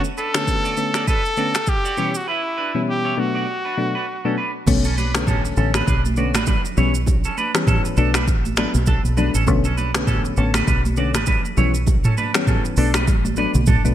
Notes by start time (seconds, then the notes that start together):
0.04 shaker
0.18 D4 A4 B4, shaker
0.34 D3 A3 B3 C#4, finger snap, cross-stick, shaker
0.47 kick, shaker
0.65 F#4 D5, shaker
0.77 D3 A3 B3 C#4, shaker
0.94 F#4 D5, finger snap, cross-stick, shaker
1.07 D4 A4 B4, kick, shaker
1.26 shaker
1.37 D3 A3 B3 C#4 F#4 D5, shaker
1.55 finger snap, cross-stick, shaker
1.66 G4, kick, shaker
1.85 F#4 D5, shaker
1.97 B2 E3 G3 B3 C#4 E4 C#5, shaker
2.15 F#4, shaker
2.28 E4 B4
2.58 D4 B4
2.75 B2 E3 G3 B3 C#4
2.89 G4
3.05 E4 C#5
3.17 B2 F#3 A3 B3 D4 F#4
3.35 F#4 D5
3.65 D4 B4
3.77 B2 F#3 A3 B3 D4
3.95 D4 B4
4.25 B2 F#3 A3 B3 C#4 D4 A4
4.38 D4 B4
4.67 B1 D3 A3 B3 C#4, kick, crash, low conga, shaker
4.84 C#4 A4, shaker
4.98 D4 B4, high conga, shaker
5.15 D3 A3 B3 C#4, finger snap, cross-stick, shaker
5.27 C#4 A4, kick, mid tom, low conga, shaker
5.45 shaker
5.57 A1 D3 A3 B3 C#4 A4, shaker
5.74 D4 B4, finger snap, cross-stick, high conga, shaker
5.87 B1 D4 B4, kick, shaker
6.05 high conga, shaker
6.16 D3 A3 B3 C#4 F#4 D5, shaker
6.34 A1 D4 B4, finger snap, cross-stick, high conga, shaker
6.46 D4 B4, kick, low conga, shaker
6.65 shaker
6.77 B1 E3 G3 B3 C#4 E4 C#5, low conga, shaker
6.94 shaker
7.06 kick, low conga, shaker
7.24 C#4 A4, shaker
7.38 D4 B4, high conga, shaker
7.54 E3 G3 B3 C#4, finger snap, cross-stick, shaker
7.67 C#4 A4, kick, mid tom, low conga, shaker
7.85 shaker
7.97 B1 F#3 A3 B3 D4 A4, shaker
8.14 D4 B4, finger snap, cross-stick, high conga, shaker
8.28 A1, kick, shaker
8.45 high conga, shaker
8.56 F#3 A3 B3 D4 B4, finger snap, cross-stick, shaker
8.74 B1, high conga, shaker
8.86 D4 A4, kick, low conga, shaker
9.05 B1, shaker
9.17 F#3 A3 B3 D4 B4, low conga, shaker
9.35 A1 C#4 A4, shaker
9.47 B1 D3 A3 B3 C#4, kick, low conga, shaker
9.64 C#4 A4, shaker
9.77 D4 B4, high conga, shaker
9.95 D3 A3 B3 C#4, finger snap, cross-stick, shaker
10.07 C#4 A4, kick, mid tom, low conga, shaker
10.25 shaker
10.37 A1 D3 A3 B3 C#4 A4, shaker
10.54 D4 B4, finger snap, cross-stick, high conga, shaker
10.67 B1 D4 B4, kick, shaker
10.85 high conga, shaker
10.96 D3 A3 B3 C#4 F#4 D5, shaker
11.14 A1 D4 B4, finger snap, cross-stick, high conga, shaker
11.26 D4 B4, kick, low conga, shaker
11.45 shaker
11.57 B1 E3 G3 B3 C#4 E4 C#5, low conga, shaker
11.74 shaker
11.87 kick, low conga, shaker
12.04 C#4 A4, mid tom, shaker
12.18 D4 B4, high conga, shaker
12.34 E3 G3 B3 C#4, finger snap, cross-stick, shaker
12.47 C#4 A4, kick, mid tom, low conga, shaker
12.65 shaker
12.77 B1 F#3 A3 B3 D4 A4, open hi-hat, shaker
12.94 D4 B4, finger snap, cross-stick, high conga, shaker
13.07 A1, kick, high tom, shaker
13.25 high tom, high conga, shaker
13.36 F#3 A3 B3 D4 B4, shaker
13.54 B1, mid tom, high conga, shaker
13.66 D4 A4, kick, mid tom, low conga, shaker
13.85 B1 F#3 A3 B3 D4, shaker